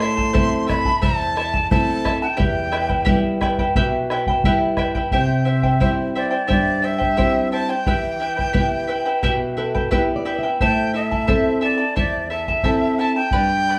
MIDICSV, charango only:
0, 0, Header, 1, 2, 480
1, 0, Start_track
1, 0, Tempo, 683371
1, 1686, Time_signature, 4, 2, 24, 8
1, 9685, End_track
2, 0, Start_track
2, 0, Title_t, "Charango"
2, 0, Program_c, 0, 24
2, 10, Note_on_c, 0, 64, 60
2, 13, Note_on_c, 0, 76, 57
2, 14, Note_on_c, 0, 69, 63
2, 20, Note_on_c, 0, 81, 65
2, 110, Note_off_c, 0, 81, 0
2, 114, Note_off_c, 0, 69, 0
2, 119, Note_on_c, 0, 81, 53
2, 123, Note_on_c, 0, 69, 49
2, 124, Note_off_c, 0, 64, 0
2, 128, Note_off_c, 0, 76, 0
2, 133, Note_on_c, 0, 64, 43
2, 226, Note_off_c, 0, 64, 0
2, 230, Note_off_c, 0, 69, 0
2, 233, Note_on_c, 0, 72, 78
2, 234, Note_off_c, 0, 81, 0
2, 235, Note_on_c, 0, 64, 81
2, 238, Note_on_c, 0, 69, 87
2, 239, Note_on_c, 0, 76, 79
2, 243, Note_on_c, 0, 81, 97
2, 460, Note_off_c, 0, 76, 0
2, 465, Note_off_c, 0, 64, 0
2, 469, Note_off_c, 0, 81, 0
2, 469, Note_on_c, 0, 76, 61
2, 471, Note_off_c, 0, 69, 0
2, 474, Note_on_c, 0, 64, 68
2, 477, Note_on_c, 0, 81, 69
2, 479, Note_off_c, 0, 72, 0
2, 479, Note_on_c, 0, 69, 73
2, 593, Note_off_c, 0, 81, 0
2, 597, Note_off_c, 0, 76, 0
2, 599, Note_off_c, 0, 64, 0
2, 599, Note_off_c, 0, 69, 0
2, 601, Note_on_c, 0, 81, 52
2, 607, Note_on_c, 0, 69, 47
2, 609, Note_on_c, 0, 64, 44
2, 708, Note_off_c, 0, 64, 0
2, 709, Note_off_c, 0, 69, 0
2, 713, Note_off_c, 0, 81, 0
2, 713, Note_on_c, 0, 72, 78
2, 714, Note_on_c, 0, 76, 71
2, 716, Note_on_c, 0, 64, 79
2, 717, Note_on_c, 0, 69, 75
2, 722, Note_on_c, 0, 81, 79
2, 945, Note_off_c, 0, 76, 0
2, 951, Note_off_c, 0, 64, 0
2, 952, Note_off_c, 0, 69, 0
2, 953, Note_on_c, 0, 76, 54
2, 959, Note_off_c, 0, 72, 0
2, 960, Note_off_c, 0, 81, 0
2, 960, Note_on_c, 0, 64, 58
2, 960, Note_on_c, 0, 69, 59
2, 968, Note_on_c, 0, 81, 66
2, 1070, Note_off_c, 0, 81, 0
2, 1079, Note_off_c, 0, 76, 0
2, 1079, Note_on_c, 0, 81, 54
2, 1080, Note_off_c, 0, 69, 0
2, 1082, Note_off_c, 0, 64, 0
2, 1089, Note_on_c, 0, 69, 45
2, 1090, Note_on_c, 0, 64, 42
2, 1197, Note_off_c, 0, 64, 0
2, 1200, Note_off_c, 0, 81, 0
2, 1201, Note_off_c, 0, 69, 0
2, 1202, Note_on_c, 0, 72, 72
2, 1205, Note_on_c, 0, 64, 75
2, 1205, Note_on_c, 0, 76, 72
2, 1209, Note_on_c, 0, 81, 84
2, 1210, Note_on_c, 0, 69, 84
2, 1428, Note_off_c, 0, 76, 0
2, 1435, Note_off_c, 0, 64, 0
2, 1436, Note_on_c, 0, 76, 61
2, 1437, Note_off_c, 0, 81, 0
2, 1438, Note_off_c, 0, 69, 0
2, 1443, Note_on_c, 0, 64, 65
2, 1444, Note_off_c, 0, 72, 0
2, 1445, Note_on_c, 0, 81, 63
2, 1446, Note_on_c, 0, 69, 66
2, 1552, Note_off_c, 0, 81, 0
2, 1553, Note_off_c, 0, 69, 0
2, 1558, Note_off_c, 0, 64, 0
2, 1560, Note_on_c, 0, 81, 53
2, 1561, Note_off_c, 0, 76, 0
2, 1562, Note_on_c, 0, 69, 47
2, 1566, Note_on_c, 0, 64, 45
2, 1655, Note_off_c, 0, 64, 0
2, 1662, Note_off_c, 0, 81, 0
2, 1663, Note_on_c, 0, 67, 77
2, 1663, Note_on_c, 0, 76, 79
2, 1664, Note_on_c, 0, 64, 76
2, 1665, Note_off_c, 0, 69, 0
2, 1665, Note_on_c, 0, 79, 86
2, 1668, Note_on_c, 0, 71, 76
2, 1900, Note_off_c, 0, 64, 0
2, 1900, Note_off_c, 0, 76, 0
2, 1907, Note_off_c, 0, 71, 0
2, 1908, Note_off_c, 0, 79, 0
2, 1908, Note_on_c, 0, 76, 53
2, 1909, Note_on_c, 0, 64, 63
2, 1915, Note_off_c, 0, 67, 0
2, 1915, Note_on_c, 0, 71, 65
2, 1917, Note_on_c, 0, 79, 68
2, 2018, Note_off_c, 0, 79, 0
2, 2024, Note_off_c, 0, 71, 0
2, 2026, Note_on_c, 0, 79, 50
2, 2031, Note_off_c, 0, 64, 0
2, 2033, Note_on_c, 0, 71, 46
2, 2037, Note_off_c, 0, 76, 0
2, 2039, Note_on_c, 0, 64, 47
2, 2141, Note_on_c, 0, 67, 97
2, 2142, Note_off_c, 0, 71, 0
2, 2143, Note_off_c, 0, 79, 0
2, 2144, Note_off_c, 0, 64, 0
2, 2145, Note_on_c, 0, 76, 90
2, 2150, Note_on_c, 0, 71, 90
2, 2151, Note_on_c, 0, 79, 93
2, 2152, Note_on_c, 0, 64, 99
2, 2385, Note_off_c, 0, 76, 0
2, 2393, Note_off_c, 0, 64, 0
2, 2393, Note_off_c, 0, 67, 0
2, 2393, Note_on_c, 0, 76, 68
2, 2396, Note_off_c, 0, 71, 0
2, 2398, Note_off_c, 0, 79, 0
2, 2402, Note_on_c, 0, 64, 73
2, 2405, Note_on_c, 0, 71, 74
2, 2406, Note_on_c, 0, 79, 75
2, 2513, Note_off_c, 0, 79, 0
2, 2516, Note_off_c, 0, 71, 0
2, 2520, Note_off_c, 0, 76, 0
2, 2521, Note_on_c, 0, 79, 55
2, 2522, Note_off_c, 0, 64, 0
2, 2525, Note_on_c, 0, 71, 53
2, 2531, Note_on_c, 0, 64, 49
2, 2632, Note_off_c, 0, 64, 0
2, 2635, Note_off_c, 0, 71, 0
2, 2638, Note_off_c, 0, 79, 0
2, 2641, Note_on_c, 0, 64, 92
2, 2641, Note_on_c, 0, 67, 82
2, 2643, Note_on_c, 0, 71, 93
2, 2643, Note_on_c, 0, 76, 84
2, 2646, Note_on_c, 0, 79, 90
2, 2876, Note_off_c, 0, 76, 0
2, 2881, Note_off_c, 0, 64, 0
2, 2882, Note_off_c, 0, 71, 0
2, 2882, Note_off_c, 0, 79, 0
2, 2883, Note_off_c, 0, 67, 0
2, 2884, Note_on_c, 0, 76, 62
2, 2890, Note_on_c, 0, 64, 65
2, 2890, Note_on_c, 0, 71, 62
2, 2890, Note_on_c, 0, 79, 70
2, 2995, Note_off_c, 0, 79, 0
2, 3004, Note_on_c, 0, 79, 58
2, 3005, Note_off_c, 0, 76, 0
2, 3006, Note_off_c, 0, 71, 0
2, 3008, Note_off_c, 0, 64, 0
2, 3015, Note_on_c, 0, 71, 52
2, 3022, Note_on_c, 0, 64, 45
2, 3122, Note_off_c, 0, 64, 0
2, 3123, Note_off_c, 0, 79, 0
2, 3125, Note_off_c, 0, 71, 0
2, 3127, Note_on_c, 0, 76, 87
2, 3128, Note_on_c, 0, 67, 85
2, 3130, Note_on_c, 0, 64, 92
2, 3132, Note_on_c, 0, 79, 97
2, 3133, Note_on_c, 0, 71, 101
2, 3344, Note_off_c, 0, 76, 0
2, 3349, Note_off_c, 0, 64, 0
2, 3351, Note_off_c, 0, 71, 0
2, 3352, Note_on_c, 0, 76, 63
2, 3356, Note_off_c, 0, 79, 0
2, 3358, Note_on_c, 0, 64, 67
2, 3359, Note_on_c, 0, 71, 72
2, 3364, Note_on_c, 0, 79, 68
2, 3367, Note_off_c, 0, 67, 0
2, 3466, Note_off_c, 0, 79, 0
2, 3473, Note_off_c, 0, 71, 0
2, 3475, Note_on_c, 0, 79, 55
2, 3479, Note_off_c, 0, 76, 0
2, 3482, Note_off_c, 0, 64, 0
2, 3482, Note_on_c, 0, 71, 58
2, 3492, Note_on_c, 0, 64, 47
2, 3592, Note_off_c, 0, 64, 0
2, 3596, Note_on_c, 0, 67, 63
2, 3597, Note_off_c, 0, 79, 0
2, 3597, Note_on_c, 0, 76, 70
2, 3601, Note_on_c, 0, 64, 77
2, 3603, Note_off_c, 0, 71, 0
2, 3605, Note_on_c, 0, 79, 81
2, 3606, Note_on_c, 0, 72, 75
2, 3818, Note_off_c, 0, 76, 0
2, 3821, Note_off_c, 0, 64, 0
2, 3822, Note_off_c, 0, 72, 0
2, 3827, Note_on_c, 0, 76, 54
2, 3828, Note_off_c, 0, 79, 0
2, 3829, Note_on_c, 0, 64, 56
2, 3830, Note_on_c, 0, 72, 58
2, 3836, Note_on_c, 0, 79, 58
2, 3841, Note_off_c, 0, 67, 0
2, 3947, Note_off_c, 0, 79, 0
2, 3950, Note_off_c, 0, 72, 0
2, 3956, Note_off_c, 0, 76, 0
2, 3956, Note_on_c, 0, 79, 45
2, 3957, Note_off_c, 0, 64, 0
2, 3959, Note_on_c, 0, 72, 49
2, 3965, Note_on_c, 0, 64, 38
2, 4070, Note_off_c, 0, 72, 0
2, 4072, Note_off_c, 0, 64, 0
2, 4074, Note_off_c, 0, 79, 0
2, 4075, Note_on_c, 0, 67, 69
2, 4079, Note_on_c, 0, 72, 78
2, 4080, Note_on_c, 0, 64, 70
2, 4082, Note_on_c, 0, 76, 70
2, 4082, Note_on_c, 0, 79, 70
2, 4314, Note_off_c, 0, 76, 0
2, 4316, Note_off_c, 0, 64, 0
2, 4319, Note_off_c, 0, 72, 0
2, 4321, Note_off_c, 0, 67, 0
2, 4322, Note_on_c, 0, 76, 59
2, 4324, Note_off_c, 0, 79, 0
2, 4325, Note_on_c, 0, 64, 58
2, 4328, Note_on_c, 0, 72, 66
2, 4331, Note_on_c, 0, 79, 61
2, 4421, Note_off_c, 0, 79, 0
2, 4426, Note_off_c, 0, 72, 0
2, 4429, Note_on_c, 0, 79, 48
2, 4431, Note_off_c, 0, 64, 0
2, 4434, Note_on_c, 0, 72, 41
2, 4439, Note_on_c, 0, 64, 40
2, 4444, Note_off_c, 0, 76, 0
2, 4541, Note_off_c, 0, 64, 0
2, 4543, Note_off_c, 0, 72, 0
2, 4547, Note_on_c, 0, 67, 70
2, 4548, Note_off_c, 0, 79, 0
2, 4550, Note_on_c, 0, 64, 75
2, 4551, Note_on_c, 0, 76, 74
2, 4552, Note_on_c, 0, 72, 76
2, 4557, Note_on_c, 0, 79, 78
2, 4782, Note_off_c, 0, 76, 0
2, 4788, Note_off_c, 0, 64, 0
2, 4790, Note_on_c, 0, 76, 46
2, 4791, Note_off_c, 0, 72, 0
2, 4792, Note_off_c, 0, 79, 0
2, 4796, Note_off_c, 0, 67, 0
2, 4796, Note_on_c, 0, 64, 56
2, 4799, Note_on_c, 0, 72, 54
2, 4800, Note_on_c, 0, 79, 59
2, 4897, Note_off_c, 0, 79, 0
2, 4903, Note_off_c, 0, 72, 0
2, 4906, Note_on_c, 0, 79, 46
2, 4908, Note_off_c, 0, 64, 0
2, 4911, Note_on_c, 0, 72, 42
2, 4916, Note_on_c, 0, 64, 43
2, 4918, Note_off_c, 0, 76, 0
2, 5031, Note_off_c, 0, 72, 0
2, 5032, Note_off_c, 0, 64, 0
2, 5034, Note_on_c, 0, 67, 69
2, 5036, Note_off_c, 0, 79, 0
2, 5037, Note_on_c, 0, 76, 78
2, 5040, Note_on_c, 0, 64, 77
2, 5040, Note_on_c, 0, 72, 77
2, 5045, Note_on_c, 0, 79, 81
2, 5273, Note_off_c, 0, 76, 0
2, 5275, Note_off_c, 0, 64, 0
2, 5279, Note_off_c, 0, 72, 0
2, 5280, Note_off_c, 0, 67, 0
2, 5281, Note_on_c, 0, 76, 54
2, 5283, Note_off_c, 0, 79, 0
2, 5284, Note_on_c, 0, 64, 58
2, 5288, Note_on_c, 0, 72, 65
2, 5291, Note_on_c, 0, 79, 56
2, 5392, Note_off_c, 0, 79, 0
2, 5395, Note_off_c, 0, 72, 0
2, 5399, Note_off_c, 0, 64, 0
2, 5400, Note_on_c, 0, 79, 51
2, 5403, Note_off_c, 0, 76, 0
2, 5404, Note_on_c, 0, 72, 45
2, 5407, Note_on_c, 0, 64, 39
2, 5523, Note_off_c, 0, 79, 0
2, 5523, Note_on_c, 0, 67, 67
2, 5524, Note_off_c, 0, 64, 0
2, 5524, Note_off_c, 0, 72, 0
2, 5527, Note_on_c, 0, 71, 79
2, 5531, Note_on_c, 0, 76, 73
2, 5531, Note_on_c, 0, 79, 82
2, 5533, Note_on_c, 0, 64, 79
2, 5749, Note_off_c, 0, 76, 0
2, 5755, Note_off_c, 0, 64, 0
2, 5757, Note_on_c, 0, 76, 50
2, 5759, Note_off_c, 0, 71, 0
2, 5762, Note_off_c, 0, 79, 0
2, 5764, Note_off_c, 0, 67, 0
2, 5764, Note_on_c, 0, 64, 58
2, 5767, Note_on_c, 0, 71, 54
2, 5770, Note_on_c, 0, 79, 54
2, 5866, Note_off_c, 0, 79, 0
2, 5870, Note_off_c, 0, 71, 0
2, 5874, Note_on_c, 0, 79, 46
2, 5876, Note_off_c, 0, 64, 0
2, 5879, Note_on_c, 0, 71, 48
2, 5881, Note_off_c, 0, 76, 0
2, 5884, Note_on_c, 0, 64, 42
2, 5985, Note_off_c, 0, 64, 0
2, 5988, Note_off_c, 0, 79, 0
2, 5991, Note_off_c, 0, 71, 0
2, 5991, Note_on_c, 0, 67, 76
2, 5992, Note_on_c, 0, 76, 77
2, 5993, Note_on_c, 0, 64, 90
2, 5996, Note_on_c, 0, 79, 88
2, 5999, Note_on_c, 0, 71, 91
2, 6225, Note_off_c, 0, 76, 0
2, 6232, Note_off_c, 0, 64, 0
2, 6233, Note_off_c, 0, 71, 0
2, 6233, Note_on_c, 0, 76, 61
2, 6238, Note_off_c, 0, 67, 0
2, 6240, Note_on_c, 0, 64, 65
2, 6241, Note_off_c, 0, 79, 0
2, 6241, Note_on_c, 0, 71, 73
2, 6249, Note_on_c, 0, 79, 67
2, 6351, Note_off_c, 0, 79, 0
2, 6356, Note_off_c, 0, 71, 0
2, 6359, Note_off_c, 0, 76, 0
2, 6359, Note_on_c, 0, 79, 56
2, 6363, Note_off_c, 0, 64, 0
2, 6365, Note_on_c, 0, 71, 57
2, 6370, Note_on_c, 0, 64, 48
2, 6479, Note_off_c, 0, 64, 0
2, 6480, Note_off_c, 0, 71, 0
2, 6481, Note_on_c, 0, 67, 73
2, 6482, Note_off_c, 0, 79, 0
2, 6484, Note_on_c, 0, 76, 84
2, 6488, Note_on_c, 0, 64, 92
2, 6489, Note_on_c, 0, 71, 89
2, 6490, Note_on_c, 0, 79, 90
2, 6712, Note_off_c, 0, 76, 0
2, 6713, Note_off_c, 0, 64, 0
2, 6719, Note_off_c, 0, 71, 0
2, 6719, Note_off_c, 0, 79, 0
2, 6720, Note_on_c, 0, 76, 63
2, 6721, Note_on_c, 0, 64, 61
2, 6723, Note_off_c, 0, 67, 0
2, 6727, Note_on_c, 0, 71, 63
2, 6728, Note_on_c, 0, 79, 62
2, 6837, Note_off_c, 0, 71, 0
2, 6837, Note_off_c, 0, 79, 0
2, 6842, Note_off_c, 0, 76, 0
2, 6843, Note_off_c, 0, 64, 0
2, 6845, Note_on_c, 0, 71, 51
2, 6846, Note_on_c, 0, 79, 53
2, 6852, Note_on_c, 0, 64, 48
2, 6955, Note_off_c, 0, 71, 0
2, 6956, Note_off_c, 0, 64, 0
2, 6960, Note_on_c, 0, 76, 89
2, 6961, Note_off_c, 0, 79, 0
2, 6962, Note_on_c, 0, 67, 78
2, 6963, Note_on_c, 0, 71, 91
2, 6964, Note_on_c, 0, 64, 84
2, 6970, Note_on_c, 0, 79, 81
2, 7193, Note_off_c, 0, 64, 0
2, 7193, Note_off_c, 0, 76, 0
2, 7195, Note_off_c, 0, 71, 0
2, 7199, Note_off_c, 0, 79, 0
2, 7201, Note_on_c, 0, 76, 64
2, 7202, Note_on_c, 0, 64, 66
2, 7203, Note_off_c, 0, 67, 0
2, 7204, Note_on_c, 0, 71, 75
2, 7207, Note_on_c, 0, 79, 72
2, 7319, Note_off_c, 0, 79, 0
2, 7323, Note_off_c, 0, 64, 0
2, 7323, Note_off_c, 0, 76, 0
2, 7324, Note_off_c, 0, 71, 0
2, 7327, Note_on_c, 0, 79, 47
2, 7334, Note_on_c, 0, 71, 46
2, 7343, Note_on_c, 0, 64, 40
2, 7446, Note_off_c, 0, 79, 0
2, 7448, Note_off_c, 0, 64, 0
2, 7449, Note_off_c, 0, 71, 0
2, 7450, Note_on_c, 0, 72, 69
2, 7451, Note_on_c, 0, 76, 82
2, 7457, Note_on_c, 0, 64, 71
2, 7458, Note_on_c, 0, 81, 82
2, 7459, Note_on_c, 0, 69, 84
2, 7672, Note_off_c, 0, 76, 0
2, 7677, Note_off_c, 0, 64, 0
2, 7677, Note_off_c, 0, 69, 0
2, 7681, Note_on_c, 0, 76, 48
2, 7686, Note_on_c, 0, 64, 52
2, 7686, Note_on_c, 0, 69, 54
2, 7687, Note_off_c, 0, 72, 0
2, 7687, Note_off_c, 0, 81, 0
2, 7695, Note_on_c, 0, 81, 58
2, 7798, Note_off_c, 0, 81, 0
2, 7803, Note_off_c, 0, 69, 0
2, 7803, Note_off_c, 0, 76, 0
2, 7805, Note_off_c, 0, 64, 0
2, 7806, Note_on_c, 0, 81, 53
2, 7812, Note_on_c, 0, 69, 45
2, 7813, Note_on_c, 0, 64, 44
2, 7912, Note_off_c, 0, 69, 0
2, 7914, Note_off_c, 0, 64, 0
2, 7916, Note_off_c, 0, 81, 0
2, 7919, Note_on_c, 0, 76, 81
2, 7921, Note_on_c, 0, 69, 84
2, 7923, Note_on_c, 0, 64, 75
2, 7923, Note_on_c, 0, 72, 79
2, 7925, Note_on_c, 0, 81, 79
2, 8145, Note_off_c, 0, 76, 0
2, 8148, Note_off_c, 0, 64, 0
2, 8154, Note_on_c, 0, 76, 62
2, 8155, Note_off_c, 0, 69, 0
2, 8155, Note_off_c, 0, 81, 0
2, 8156, Note_on_c, 0, 64, 59
2, 8163, Note_off_c, 0, 72, 0
2, 8163, Note_on_c, 0, 69, 64
2, 8164, Note_on_c, 0, 81, 64
2, 8263, Note_off_c, 0, 81, 0
2, 8266, Note_off_c, 0, 69, 0
2, 8272, Note_on_c, 0, 81, 51
2, 8274, Note_off_c, 0, 64, 0
2, 8275, Note_on_c, 0, 69, 52
2, 8279, Note_off_c, 0, 76, 0
2, 8283, Note_on_c, 0, 64, 44
2, 8395, Note_off_c, 0, 64, 0
2, 8398, Note_off_c, 0, 81, 0
2, 8399, Note_on_c, 0, 72, 67
2, 8400, Note_off_c, 0, 69, 0
2, 8403, Note_on_c, 0, 76, 72
2, 8404, Note_on_c, 0, 64, 78
2, 8405, Note_on_c, 0, 81, 86
2, 8408, Note_on_c, 0, 69, 77
2, 8631, Note_off_c, 0, 64, 0
2, 8631, Note_off_c, 0, 76, 0
2, 8636, Note_off_c, 0, 69, 0
2, 8639, Note_on_c, 0, 64, 56
2, 8640, Note_on_c, 0, 76, 51
2, 8642, Note_off_c, 0, 72, 0
2, 8642, Note_off_c, 0, 81, 0
2, 8645, Note_on_c, 0, 69, 57
2, 8650, Note_on_c, 0, 81, 59
2, 8759, Note_off_c, 0, 81, 0
2, 8762, Note_off_c, 0, 64, 0
2, 8762, Note_off_c, 0, 76, 0
2, 8764, Note_off_c, 0, 69, 0
2, 8767, Note_on_c, 0, 81, 47
2, 8772, Note_on_c, 0, 69, 45
2, 8779, Note_on_c, 0, 64, 41
2, 8871, Note_off_c, 0, 64, 0
2, 8874, Note_off_c, 0, 69, 0
2, 8876, Note_on_c, 0, 72, 67
2, 8878, Note_on_c, 0, 76, 80
2, 8880, Note_off_c, 0, 81, 0
2, 8880, Note_on_c, 0, 64, 73
2, 8882, Note_on_c, 0, 69, 73
2, 8888, Note_on_c, 0, 81, 81
2, 9117, Note_off_c, 0, 76, 0
2, 9120, Note_off_c, 0, 64, 0
2, 9120, Note_off_c, 0, 72, 0
2, 9123, Note_off_c, 0, 69, 0
2, 9125, Note_on_c, 0, 76, 58
2, 9126, Note_off_c, 0, 81, 0
2, 9128, Note_on_c, 0, 64, 57
2, 9135, Note_on_c, 0, 69, 61
2, 9137, Note_on_c, 0, 81, 68
2, 9236, Note_off_c, 0, 81, 0
2, 9239, Note_off_c, 0, 69, 0
2, 9243, Note_off_c, 0, 64, 0
2, 9244, Note_on_c, 0, 81, 49
2, 9245, Note_off_c, 0, 76, 0
2, 9248, Note_on_c, 0, 69, 45
2, 9252, Note_on_c, 0, 64, 41
2, 9356, Note_off_c, 0, 69, 0
2, 9357, Note_off_c, 0, 64, 0
2, 9358, Note_off_c, 0, 81, 0
2, 9359, Note_on_c, 0, 67, 70
2, 9359, Note_on_c, 0, 74, 78
2, 9360, Note_on_c, 0, 71, 73
2, 9361, Note_on_c, 0, 83, 86
2, 9362, Note_on_c, 0, 79, 73
2, 9602, Note_off_c, 0, 67, 0
2, 9602, Note_off_c, 0, 71, 0
2, 9602, Note_off_c, 0, 74, 0
2, 9603, Note_off_c, 0, 79, 0
2, 9603, Note_off_c, 0, 83, 0
2, 9613, Note_on_c, 0, 79, 54
2, 9618, Note_on_c, 0, 71, 50
2, 9623, Note_on_c, 0, 74, 55
2, 9625, Note_on_c, 0, 83, 64
2, 9685, Note_off_c, 0, 71, 0
2, 9685, Note_off_c, 0, 74, 0
2, 9685, Note_off_c, 0, 79, 0
2, 9685, Note_off_c, 0, 83, 0
2, 9685, End_track
0, 0, End_of_file